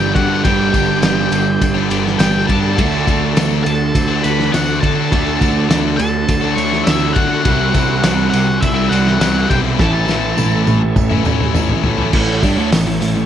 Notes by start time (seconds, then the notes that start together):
Already playing: G1 G2 D3 G3 B3 D4 G4 D5 G5
0.00 G3 B3 D4 G4
0.13 G2 G3 B3 D4 F#4 F#5, kick, ride
0.17 G4
0.28 G3 B3 D4 G4
0.43 G1 G2 D3 G3 B3 D4 G4 B4 D5 G5, kick, ride, tambourine
0.72 G1 G3 B3 D4 G4, kick, ride, tambourine
1.01 G1 G2 D3 G3 B3 D4 G4, snare, ride, tambourine
1.16 G3 B3 D4 G4
1.31 G1, muted distorted electric guitar stroke, ride, tambourine
1.61 G1, kick, ride, tambourine
1.74 G3 B3 D4 G4
1.89 G1 G3 B3 D4 G4, ride, tambourine
2.06 snare
2.18 G1 G2 D3 G3 B3 D4 G4 G5, snare, ride, tambourine
2.32 G3 B3 D4 G4
2.46 G2 G3 B3 D4 G4 A4 A5, kick, ride, tambourine
2.62 G3 B3 D4 G4
2.76 D2 D3 A3 D4 F#4 D5, kick, ride
3.06 D2 D3 A3 D4 F#4, kick, ride, tambourine
3.34 D2 D3 A3 D4 F#4, snare, ride, tambourine
3.48 A3 D4 F#4
3.64 D2 A4 A5, muted distorted electric guitar stroke, ride, tambourine
3.95 D2, kick, ride, tambourine
4.08 A3 D4 F#4
4.22 D2 D3 A3 D4 F#4 B4 B5, ride, tambourine
4.40 snare
4.51 D2 D3 A3 D4 F#4 F#5, snare, ride, tambourine
4.55 F#4
4.66 A3 D4 F#4
4.80 D3 A3 D4 F#4 A4 A5, kick, ride
4.95 A3 D4 F#4
5.10 D2 D3 A3 D4 F#4, kick, ride
5.40 D2 D3 A3 D4 F#4, kick, ride, tambourine
5.68 D2 D3 A3 D4 F#4, snare, ride, tambourine
5.83 A3 D4 F#4
5.97 D2 A4 A5, muted distorted electric guitar stroke, ride, tambourine
6.29 D2, kick, ride, tambourine
6.41 A3 D4 F#4
6.55 D2 D3 A3 D4 F#4 C#5 C#6, ride, tambourine
6.73 snare
6.84 D2 D3 A3 D4 E4 E5, snare, ride, tambourine
6.88 F#4
6.99 A3 D4 F#4
7.13 D3 A3 D4 F#4 F#5, kick, ride
7.28 A3 D4 F#4
7.43 C2 C3 E3 G3 C4 E4 C5, kick, ride
7.72 C2 E3 G3 C4, kick, ride, tambourine
7.76 E4
8.01 C2 C3 E3 G3 C4 E4, snare, ride, tambourine
8.15 G3 C4 E4
8.30 C2 F#4 F#5, muted distorted electric guitar stroke, ride, tambourine
8.61 C2 E4 E5, kick, ride, tambourine
8.74 G3 C4 E4
8.89 C2 E3 G3 C4 E4 F#4 F#5, ride, tambourine
9.07 snare
9.18 C2 C3 E3 G3 C4 E4, snare, ride, tambourine
9.34 G3 C4 E4
9.48 B1 E3 G3 C4 E4 G4 G5, kick, ride
9.63 G3 C4 E4
9.77 A1 A2 E3 A3 C#4 E4 A4 C#5 A5, kick, snare, tambourine
10.07 A1 E3 A3 C#4 E4, snare, tambourine
10.36 A1 A2 E3 A3 C#4 E4, high tom, tambourine
10.51 A3 C#4 E4
10.66 A1, muted distorted electric guitar stroke, high tom, tambourine
10.96 A1, kick, mid tom, tambourine
11.10 A3 C#4 E4, mid tom
11.24 A1 E3 A3 C#4 E4, mid tom, tambourine
11.41 mid tom
11.54 A1 A2 E3 A3 C#4 E4, mid tom, tambourine
11.68 A3 C#4 E4, floor tom
11.82 A2 E3 A3 B3 C#4, floor tom
11.86 C4 E4
11.91 D4 E4
11.96 A3 C#4 E4 F4 G4, floor tom
12.02 A4 B4
12.08 C5 D5
12.12 A1 A2 E3 A3 C#4 E4 C#5, kick, crash, tambourine
12.41 G2 G3 D4, kick, open hi-hat, tambourine
12.56 D2 D3 A3
12.71 A1 A2 E3, snare, open hi-hat, tambourine
12.86 A1 A2 E3
13.01 A1 A2 E3, open hi-hat, tambourine
13.15 A1 A2 E3, tambourine